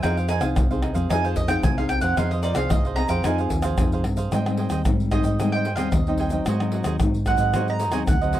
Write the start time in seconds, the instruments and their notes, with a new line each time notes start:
0.03 fingered electric bass F2, nylon-string guitar F3 C4 D#4 G#4, cavaquinho D#4 G#4 C5 F5, mandolin G5, pandeiro, tamborim, shaker, surdo
0.17 cavaquinho G#4 C5 F5, pandeiro, shaker
0.28 cavaquinho D#4 G#4 C5 F5, mandolin G#5, pandeiro, shaker
0.41 fingered electric bass C2, nylon-string guitar C4 D#4 G#4, cavaquinho G#4 C5 F5, pandeiro, tamborim, shaker
0.56 fingered electric bass C2, nylon-string guitar C3, pandeiro, tamborim, shaker, surdo
0.71 nylon-string guitar C4 D#4 G#4, cavaquinho G#4 C5 F5, pandeiro, shaker
0.82 cavaquinho D#4 G#4 C5 F5, pandeiro, tamborim
0.95 fingered electric bass F2, nylon-string guitar C4 D#4 G#4, cavaquinho G#4 C5 F5, pandeiro, shaker
1.10 fingered electric bass F2, nylon-string guitar F3 C4 D#4 G#4, cavaquinho D#4 G#4 C5 F5, mandolin G#5, pandeiro, tamborim, shaker, surdo
1.24 cavaquinho G#4 C5 F5, mandolin C5, pandeiro, shaker
1.36 mandolin D#5, muted cavaquinho stroke, pandeiro, shaker, surdo
1.48 nylon-string guitar C4 D#4 G#4, cavaquinho G#4 C5 F5, mandolin G5, pandeiro, tamborim, shaker
1.63 fingered electric bass C2, nylon-string guitar C3, mandolin G#5, pandeiro, tamborim, shaker, surdo
1.77 nylon-string guitar C4 D#4 G#4, cavaquinho G#4 C5 F5, mandolin F5, pandeiro, shaker
1.89 mandolin G5, muted cavaquinho stroke, pandeiro, tamborim, shaker
2.01 fingered electric bass F2, cavaquinho G#4 C5 F5, mandolin F#5, pandeiro, shaker
2.17 fingered electric bass F2, nylon-string guitar F3 C4 D#4 G#4, cavaquinho D#4 G#4 C5 F5, mandolin F5, pandeiro, tamborim, shaker, surdo
2.31 cavaquinho G#4 C5 F5, mandolin D#5, pandeiro, shaker
2.43 cavaquinho D#4 G#4 C5 F5, mandolin D5, pandeiro, shaker
2.55 fingered electric bass C2, nylon-string guitar C4 D#4 G#4, cavaquinho G#4 C5 F5, mandolin F5, pandeiro, tamborim, shaker
2.70 fingered electric bass C2, nylon-string guitar C3, mandolin D#5, pandeiro, tamborim, shaker, surdo
2.85 cavaquinho G#4 C5 F5, pandeiro, shaker
2.96 nylon-string guitar C4 D#4 G#4, cavaquinho D#4 G#4 C5 F5, mandolin A#5, pandeiro, tamborim
3.08 fingered electric bass F2, cavaquinho G#4 C5 F5, mandolin G5, pandeiro, shaker
3.24 fingered electric bass F2, nylon-string guitar F3 C4 D#4 G#4, cavaquinho D#4 G#4 C5 F5, mandolin G#5, pandeiro, tamborim, shaker, surdo
3.38 cavaquinho G#4 C5 F5, pandeiro, shaker
3.50 fingered electric bass D#2, muted cavaquinho stroke, pandeiro, shaker, surdo
3.62 cavaquinho G#4 C5 F5, pandeiro, tamborim, shaker
3.78 fingered electric bass F2, nylon-string guitar C3 C4 D#4 G#4, pandeiro, tamborim, shaker, surdo
3.92 cavaquinho G#4 C5 F5, pandeiro, shaker
4.04 fingered electric bass G2, muted cavaquinho stroke, pandeiro, tamborim
4.17 cavaquinho G#4 C5 F5, pandeiro, shaker
4.32 fingered electric bass G#2, nylon-string guitar G#2 G3 C4 D#4, cavaquinho G#4 C5 D#5 G5, pandeiro, tamborim, shaker, surdo
4.46 nylon-string guitar G3 C4 D#4, pandeiro, tamborim, shaker
4.57 cavaquinho G#4 C5 D#5 G5, pandeiro
4.70 fingered electric bass D#2, cavaquinho G#4 C5 D#5 G5, pandeiro, tamborim, shaker
4.85 fingered electric bass G#2, nylon-string guitar D#3 G3 C4 D#4, pandeiro, tamborim, shaker, surdo
5.00 pandeiro, shaker
5.11 nylon-string guitar G3 C4 D#4, cavaquinho G#4 C5 D#5 G5, mandolin D#5, pandeiro, tamborim, shaker, surdo
5.24 fingered electric bass G#2, cavaquinho C5 D#5 G5, pandeiro, shaker
5.40 nylon-string guitar G#2 G3 C4 D#4, cavaquinho G#4 C5 D#5 G5, pandeiro, tamborim, shaker, surdo
5.52 cavaquinho C5 D#5 G5, mandolin G5, pandeiro, shaker
5.65 cavaquinho G#4 C5 D#5 G5, pandeiro
5.76 fingered electric bass D#2, nylon-string guitar G3 C4 D#4, cavaquinho G#4 C5 D#5 G5, mandolin F5, pandeiro, tamborim, shaker
5.92 fingered electric bass D#2, nylon-string guitar D#3, mandolin D#5, pandeiro, tamborim, shaker, surdo
6.07 nylon-string guitar G3 C4 D#4, cavaquinho C5 D#5 G5, pandeiro, shaker
6.17 cavaquinho G#4 C5 D#5 G5, pandeiro
6.30 nylon-string guitar F#3 C4 D#4, cavaquinho C5 D#5 G5, pandeiro, shaker
6.46 nylon-string guitar G#2, fingered electric bass G#2, cavaquinho F#4 G#4 C5 D#5, pandeiro, tamborim, shaker, surdo
6.60 nylon-string guitar F#3 C4 D#4, pandeiro, tamborim, shaker
6.72 cavaquinho F#4 G#4 C5 D#5, pandeiro
6.84 fingered electric bass D#2, cavaquinho F#4 G#4 C5 D#5, pandeiro, tamborim, shaker
7.00 fingered electric bass G#2, nylon-string guitar D#3 F#3 C4 D#4, pandeiro, tamborim, shaker, surdo
7.14 pandeiro, shaker
7.26 nylon-string guitar F#3 C4 D#4, cavaquinho F#4 G#4 C5 D#5, mandolin F#5, pandeiro, tamborim, shaker, surdo
7.38 fingered electric bass G#2, cavaquinho G#4 C5 D#5, pandeiro, shaker
7.54 nylon-string guitar G#2 F#3 C4 D#4, cavaquinho F#4 G#4 C5 D#5, pandeiro, tamborim, shaker, surdo
7.68 cavaquinho G#4 C5 D#5, mandolin A#5, pandeiro, shaker
7.80 cavaquinho F#4 G#4 C5 D#5, pandeiro, shaker
7.92 fingered electric bass D#2, nylon-string guitar F#3 C4 D#4, cavaquinho F#4 G#4 C5 D#5, mandolin G#5, pandeiro, tamborim, shaker
8.07 fingered electric bass D2, mandolin F#5, pandeiro, tamborim, shaker, surdo
8.21 nylon-string guitar F#3 C4 D#4, cavaquinho G#4 C5 D#5, pandeiro, shaker
8.33 cavaquinho F#4 G#4 C5 D#5, pandeiro, shaker